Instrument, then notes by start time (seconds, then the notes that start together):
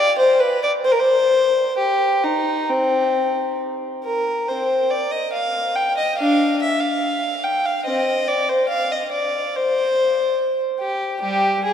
violin
Already playing: D5
0.18 C5
0.40 B4
0.63 D5
0.85 C5
0.91 A#4
0.99 C5
1.79 G4
2.24 D#4
2.69 C4
4.05 A#4
4.48 C4 C5
4.90 D5
5.11 D#5
5.33 F5
5.75 G5
5.97 D#5
6.18 D4 F5
6.62 E5
6.80 F5
7.44 G5
7.66 F5
7.85 C4 D#5
8.28 D5
8.49 C5
8.69 F5
8.91 D#5
9.12 D5
9.55 C5
10.80 G4
11.21 G3 G4
11.64 G#4